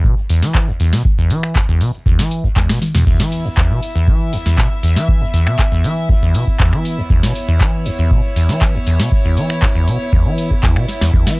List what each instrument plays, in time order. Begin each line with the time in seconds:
0.04 acid bass B2, kick, shaker
0.18 shaker
0.30 acid bass E2, open hi-hat, shaker
0.43 acid bass E3, snare, shaker
0.55 kick, clap, shaker
0.68 acid bass E2, shaker
0.80 acid bass E2, open hi-hat, shaker
0.93 acid bass B2, snare, shaker
1.05 kick, shaker
1.18 acid bass E2, shaker
1.30 acid bass E3, open hi-hat, shaker
1.43 finger snap, shaker
1.55 acid bass E2, kick, clap, shaker
1.69 acid bass E2, shaker
1.81 acid bass B2, open hi-hat, shaker
1.94 shaker
2.06 acid bass E2, kick, shaker
2.19 acid bass E3, snare, shaker
2.31 open hi-hat, shaker
2.44 acid bass E2, kick, shaker
2.56 acid bass E2, kick, clap, high tom, shaker
2.69 acid bass B2, finger snap, snare, high tom, shaker
2.82 snare, open hi-hat, mid tom, shaker
2.95 acid bass E2, snare, mid tom, shaker
3.07 acid bass E2, string section B3 E4 E5, kick, crash, shaker
3.20 acid bass E3, snare, shaker
3.32 open hi-hat, shaker
3.45 acid bass E2, shaker
3.57 acid bass E2, kick, clap, shaker
3.70 acid bass B2, shaker
3.83 open hi-hat, shaker
3.95 acid bass E2, shaker
4.08 acid bass E3, kick, shaker
4.21 shaker
4.33 acid bass E2, open hi-hat, shaker
4.46 acid bass E2, snare, shaker
4.58 acid bass B2, kick, clap, shaker
4.72 shaker
4.83 acid bass E2, open hi-hat, shaker
4.96 acid bass E3, snare, shaker
5.08 kick, shaker
5.21 acid bass E2, shaker
5.34 acid bass E2, open hi-hat, shaker
5.47 acid bass B2, finger snap, shaker
5.59 kick, clap, shaker
5.72 acid bass E2, shaker
5.84 acid bass E3, open hi-hat, shaker
5.98 shaker
6.09 acid bass E2, kick, shaker
6.22 acid bass E2, shaker
6.34 acid bass B2, open hi-hat, shaker
6.47 kick, shaker
6.60 acid bass E2, kick, clap, shaker
6.73 acid bass E3, finger snap, shaker
6.85 open hi-hat, shaker
6.98 acid bass E2, shaker
7.10 acid bass E2, string section C#5, kick, shaker
7.23 acid bass B2, snare, shaker
7.35 open hi-hat, shaker
7.48 acid bass E2, shaker
7.61 acid bass E3, kick, clap, shaker
7.74 shaker
7.86 acid bass E2, open hi-hat, shaker
7.99 acid bass E2, shaker
8.11 acid bass B2, kick, shaker
8.25 shaker
8.36 acid bass E2, open hi-hat, shaker
8.49 acid bass E3, snare, shaker
8.61 kick, clap, shaker
8.74 acid bass E2, shaker
8.87 acid bass E2, open hi-hat, shaker
9.00 acid bass B2, snare, shaker
9.12 kick, shaker
9.25 acid bass E2, shaker
9.37 acid bass E3, open hi-hat, shaker
9.50 finger snap, shaker
9.62 acid bass E2, kick, clap, shaker
9.75 acid bass E2, shaker
9.88 acid bass B2, open hi-hat, shaker
10.01 shaker
10.13 acid bass E2, kick, shaker
10.26 acid bass E3, shaker
10.38 open hi-hat, shaker
10.51 acid bass E2, kick, shaker
10.63 acid bass E2, kick, clap, shaker
10.76 acid bass B2, finger snap, shaker
10.88 snare, open hi-hat, shaker
11.01 acid bass E2, snare, shaker
11.13 acid bass E2, string section E5, kick, shaker
11.27 acid bass E3, snare, shaker